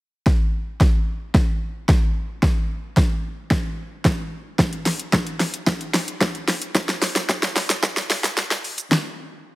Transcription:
0.27 kick, snare
0.81 kick, snare
1.35 kick, snare
1.89 kick, snare
2.43 kick, snare
2.97 kick, snare
3.51 kick, snare
4.05 kick, snare
4.59 kick, snare
4.73 closed hi-hat
4.86 snare, open hi-hat
4.99 closed hi-hat
5.13 kick, snare
5.27 closed hi-hat
5.40 snare, open hi-hat
5.54 closed hi-hat
5.67 kick, snare
5.81 closed hi-hat
5.94 snare, open hi-hat
6.08 closed hi-hat
6.21 kick, snare
6.35 closed hi-hat
6.48 snare, open hi-hat
6.62 closed hi-hat
6.75 kick, snare, shaker
6.89 snare, closed hi-hat, shaker
7.02 snare, open hi-hat, shaker
7.16 snare, closed hi-hat, shaker
7.29 kick, snare, shaker
7.43 snare, closed hi-hat, shaker
7.56 snare, open hi-hat, shaker
7.70 snare, closed hi-hat, shaker
7.83 kick, snare, shaker
7.97 snare, closed hi-hat, shaker
8.10 snare, open hi-hat, shaker
8.24 snare, closed hi-hat, shaker
8.37 snare, shaker
8.51 snare, closed hi-hat, shaker
8.64 open hi-hat, shaker
8.78 closed hi-hat, shaker
8.92 snare

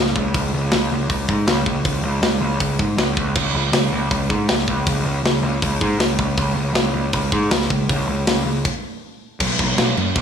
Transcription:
Already playing: C#2
0.06 snare
0.16 C#2, kick
0.34 C#2, kick, open hi-hat
0.54 C#2
0.71 C#2, snare, open hi-hat
0.92 C#2
1.09 C#2, kick, open hi-hat
1.29 G#2, kick
1.47 C#2, snare, open hi-hat
1.66 C#2, kick
1.85 C#2, kick, open hi-hat
2.03 C#2
2.22 C#2, snare, open hi-hat
2.41 C#2
2.60 C#2, kick, open hi-hat
2.79 G#2, kick
2.97 C#2, snare, open hi-hat
3.17 C#2, kick
3.35 C#2, kick, crash
3.54 C#2
3.72 C#2, snare, open hi-hat
3.92 C#2
4.11 C#2, kick, open hi-hat
4.30 G#2, kick
4.48 C#2, snare, open hi-hat
4.59 snare
4.68 C#2, kick
4.87 C#2, kick, open hi-hat
5.05 C#2
5.23 C#2, snare, open hi-hat
5.43 C#2
5.62 C#2, kick, open hi-hat
5.81 G#2, kick
5.98 C#2, snare, open hi-hat
6.19 C#2, kick
6.37 C#2, kick, open hi-hat
6.55 C#2
6.73 C#2, snare, open hi-hat
6.93 C#2
7.13 C#2, kick, open hi-hat
7.32 G#2, kick
7.51 C#2, snare, open hi-hat
7.61 snare
7.70 C#2, kick
7.89 C#2, kick, open hi-hat
8.07 C#2
8.27 C#2, snare, open hi-hat
8.45 C#2
8.65 kick, crash
9.40 B1, kick, crash
9.59 B1, kick, crash
9.76 B1, snare, crash
9.97 F#2, crash
10.15 B1, kick, crash

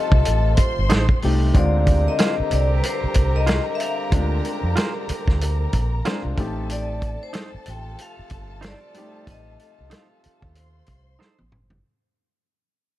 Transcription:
Already playing: C3 F3 A3 C4 D#4 F4 G4 A4 D#5 A5
0.12 C2, kick
0.25 A1, closed hi-hat
0.57 C5 C6, muted fingered electric bass stroke, kick, closed hi-hat
0.79 G1
0.89 A1 D#4 A4 C5, snare, closed hi-hat
1.09 kick
1.22 C2 A3 C4 D#4 G4, open hi-hat
1.54 D2 D3 G3 G#3 C4 F4 G4 A#4 A#5, kick, closed hi-hat
1.58 D5
1.87 kick, closed hi-hat
2.08 D#5
2.19 F4 G#4 C5, snare, closed hi-hat
2.40 muted fingered electric bass stroke
2.51 C2 D5, closed hi-hat
2.78 B4
2.84 C5, closed hi-hat
3.04 muted fingered electric bass stroke
3.14 C2, kick, closed hi-hat
3.36 D#5
3.46 F4 G#4 C5, snare, closed hi-hat
3.75 E5
3.80 F5, closed hi-hat
4.11 D2 G#3 C4 D4 F4, kick, closed hi-hat
4.45 closed hi-hat
4.63 F2
4.76 F4 G#4 C5, snare, closed hi-hat
5.09 muted fingered electric bass stroke, closed hi-hat
5.28 D2, kick, snare
5.41 closed hi-hat
5.73 A#1, kick, closed hi-hat
6.05 G#3 C4 D4 F4 G#4 C5, snare, closed hi-hat
6.25 C2
6.36 A1 A3 C4 D#4 G4 A4 A5, kick, closed hi-hat
6.70 D5, closed hi-hat
7.02 kick, closed hi-hat
7.23 C5
7.33 D#4 A4 C5, snare, closed hi-hat
7.54 muted fingered electric bass stroke
7.66 A1 C3 F3 A3 F4 G5, closed hi-hat
7.99 F5, closed hi-hat
8.19 muted fingered electric bass stroke
8.30 G1, kick, closed hi-hat
8.61 D#4 A4 C5, snare, closed hi-hat
8.66 D5
8.94 G3 C4 D#4 G4, closed hi-hat
9.00 A3
9.27 A1 D#5, kick, closed hi-hat
9.60 closed hi-hat
9.80 C2
9.90 D#4 A4 C5 F5, snare, closed hi-hat
10.24 muted fingered electric bass stroke, closed hi-hat
10.42 D#2, kick
10.55 C5 C6, closed hi-hat
10.86 C2, kick, closed hi-hat
11.19 D#4 A4 C5, snare
11.39 A1, high tom
11.52 G1, mid tom
11.70 floor tom

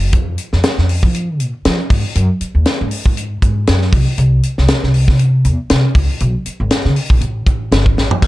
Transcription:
Already playing: F#1
0.13 F2, kick, closed hi-hat
0.38 closed hi-hat
0.53 F2, snare
0.63 snare, closed hi-hat
0.78 F2, snare
0.89 open hi-hat
1.03 F3, kick
1.14 closed hi-hat
1.40 A#2, closed hi-hat
1.65 F3, snare, closed hi-hat
1.90 G#2, kick, open hi-hat
2.15 F#2, closed hi-hat
2.41 muted upright bass stroke, closed hi-hat
2.55 D#2
2.65 snare, closed hi-hat
2.81 G#2
2.91 open hi-hat
3.06 G#2, kick
3.17 closed hi-hat
3.42 G#2, kick, closed hi-hat
3.67 F#2, snare, closed hi-hat
3.82 snare
3.92 C2, kick, open hi-hat
4.18 C2, closed hi-hat
4.43 closed hi-hat
4.58 C2, snare
4.68 snare, closed hi-hat
4.83 C2, snare
4.94 open hi-hat
5.08 C3, kick, snare
5.19 closed hi-hat
5.45 E2, closed hi-hat
5.70 C3, snare, closed hi-hat
5.95 C#2, kick, open hi-hat
6.20 B1, closed hi-hat
6.46 muted upright bass stroke, closed hi-hat
6.60 G#1
6.70 snare, closed hi-hat
6.85 C#3, snare
6.96 open hi-hat
7.10 A#1, kick
7.21 A1, closed hi-hat
7.46 A1, kick, closed hi-hat
7.72 G1, snare, closed hi-hat
7.86 kick
7.97 A1, snare
8.11 floor tom
8.22 D2, kick, crash

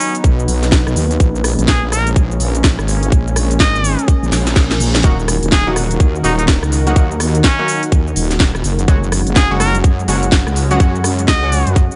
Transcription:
Already playing: F#3 B3 C#4 D#4 B4 F#5
0.00 open hi-hat, shaker
0.15 closed hi-hat, shaker
0.24 B1, kick, closed hi-hat, shaker
0.40 shaker
0.48 B1, open hi-hat, shaker
0.63 snare, closed hi-hat, shaker
0.72 kick, snare, closed hi-hat, shaker
0.87 B1, cross-stick, shaker
0.96 D#2, open hi-hat, shaker
1.11 closed hi-hat, shaker
1.20 A#1 G#3 A#3 C#4, kick, closed hi-hat, shaker
1.36 shaker
1.44 cross-stick, open hi-hat, shaker
1.59 A#1, closed hi-hat, shaker
1.68 G#4, kick, snare, closed hi-hat, shaker
1.83 A#1 A#4
1.92 A#4, cross-stick, open hi-hat, shaker
2.02 G#5
2.07 closed hi-hat, shaker
2.16 A#1, kick, closed hi-hat, shaker
2.31 shaker
2.40 A#1, open hi-hat, shaker
2.55 closed hi-hat, shaker
2.64 kick, snare, closed hi-hat, shaker
2.79 G#1, cross-stick, shaker
2.88 open hi-hat, shaker
3.03 closed hi-hat, shaker
3.12 A#1, kick, closed hi-hat, shaker
3.27 shaker
3.36 cross-stick, open hi-hat, shaker
3.51 closed hi-hat, shaker
3.60 G#1 D#5, kick, snare, closed hi-hat, shaker
3.75 shaker
3.84 open hi-hat, shaker
3.99 closed hi-hat, shaker
4.08 kick, closed hi-hat, reverse cymbal, shaker
4.23 A#1, shaker
4.32 A#1, snare, open hi-hat, shaker
4.47 snare, closed hi-hat, shaker
4.56 kick, snare, closed hi-hat, shaker
4.71 snare, shaker
4.80 A#1, open hi-hat, shaker
4.95 snare, closed hi-hat, shaker
5.04 D#1 D#3 F#3 A#3 D#4 F#4 A#4, kick, closed hi-hat, shaker
5.20 shaker
5.28 cross-stick, open hi-hat, shaker
5.43 D#1, closed hi-hat, shaker
5.52 G#4, kick, snare, closed hi-hat, shaker
5.67 D#1 F#3 A#3 D#4 F#4
5.76 cross-stick, open hi-hat, shaker
5.91 closed hi-hat, shaker
6.00 D#2, kick, closed hi-hat, shaker
6.15 F#5, shaker
6.24 D#1 F#3 A#3 D#4 F#4, open hi-hat, shaker
6.39 D#4, closed hi-hat, shaker
6.48 kick, snare, closed hi-hat, shaker
6.63 C#2, cross-stick, shaker
6.72 open hi-hat, shaker
6.87 F#3 A#3 D#4 F#4, closed hi-hat, shaker
6.96 D#2 F#3 A#3 D#4 F#4, kick, closed hi-hat, shaker
7.11 shaker
7.20 cross-stick, open hi-hat, shaker
7.35 closed hi-hat, shaker
7.44 C#4, kick, snare, closed hi-hat, shaker
7.59 F#3 A#3 D#4 F#4
7.68 open hi-hat, shaker
7.83 closed hi-hat, shaker
7.92 D#2, kick, closed hi-hat, shaker
8.07 shaker
8.16 D#1, open hi-hat, shaker
8.31 snare, closed hi-hat, shaker
8.40 kick, snare, closed hi-hat, shaker
8.55 D#1, cross-stick, shaker
8.64 F#1, open hi-hat, shaker
8.79 closed hi-hat, shaker
8.88 F#1 F#3 G#3 C#4 F#4, kick, closed hi-hat, shaker
9.03 shaker
9.12 cross-stick, open hi-hat, shaker
9.27 F#1, closed hi-hat, shaker
9.36 G#4, kick, snare, closed hi-hat, shaker
9.51 F#1 F#3 G#3 C#4 F#4 G#4
9.60 A#4, cross-stick, open hi-hat, shaker
9.75 closed hi-hat, shaker
9.84 F#2, kick, closed hi-hat, shaker
9.99 shaker
10.08 F#1 F#3 G#3 C#4 F#4, open hi-hat, shaker
10.23 closed hi-hat, shaker
10.32 kick, snare, closed hi-hat, shaker
10.47 C#2, cross-stick, shaker
10.56 open hi-hat, shaker
10.71 F#3 G#3 C#4 F#4, closed hi-hat, shaker
10.80 F#2 F#3 G#3 C#4 F#4, kick, closed hi-hat, shaker
10.95 shaker
11.04 cross-stick, open hi-hat, shaker
11.19 closed hi-hat, shaker
11.28 C#2 D#5, kick, snare, closed hi-hat, shaker
11.43 F#3 G#3 C#4 F#4
11.52 open hi-hat, shaker
11.67 F#2, closed hi-hat, shaker
11.76 kick, closed hi-hat, shaker
11.91 shaker

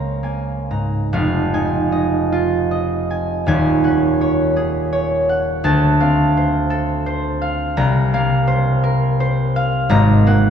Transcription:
Already playing: C#2 A#3 C4 C#5 F5 A#5
0.23 A#3 G#5
0.71 G#2 A#5
1.13 F1 F2 F5
1.54 D#4 G#5
1.92 D#5
2.32 F4
2.71 D#5
3.11 G#5
3.46 D#1 D#2 G#5
3.84 C#4 F#5
4.21 C#5
4.56 G#4
4.93 C#5
5.29 F#5
5.64 D2 A5
6.00 C4 F5
6.37 C5
6.70 A4
7.06 C5
7.42 F5
7.77 C2 A#5
8.13 A#3 F5
8.47 C5
8.84 A#4
9.20 C5
9.56 F5
9.89 G#1 G#2 A#5
10.27 A#3 F#5

